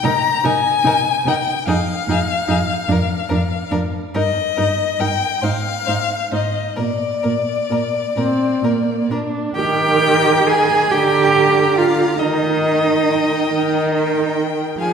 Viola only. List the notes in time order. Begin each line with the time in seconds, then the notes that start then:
0.03 D#4
0.44 D#4
0.84 D#4
1.27 D#4
1.68 D#4
2.09 D#4
2.48 D#4
2.88 D4
3.30 D4
3.71 D4
4.15 D#4
4.58 D#4
5.00 D#4
5.43 D#4
5.88 D#4
6.32 D#4
6.79 A#3
7.24 A#3
7.70 A#3
8.17 C4
8.64 A#3
9.11 D4
9.58 D#3
10.92 D3
12.21 D#3
13.51 D#3
14.79 F3